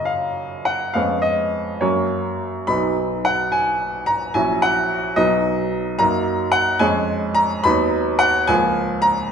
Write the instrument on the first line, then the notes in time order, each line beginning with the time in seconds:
grand piano
Already playing: F#2 C#3 A#3 C#4 D#5 A#5
0.05 F5
0.65 F#5
0.94 F2 G#3 B3 C#4 F5
1.22 D#5
1.81 F#2 F#3 A#3 C#4 C#5
2.67 B1 F#3 B3 D#4 B5
3.25 F#5
3.52 G#5
4.06 A#5
4.34 A#1 F#3 C#4 E4 G#5
4.62 F#5
5.16 B1 F#3 B3 D#4 D#5
5.99 F#2 F#3 A#3 D#4 A#5
6.52 F#5
6.79 F2 G#3 C#4 G#4 G#5
7.35 A#5
7.64 D#2 F#3 B3 D#4 B5
8.19 F#5
8.47 C#2 F3 A#3 F4 G#5
9.02 A#5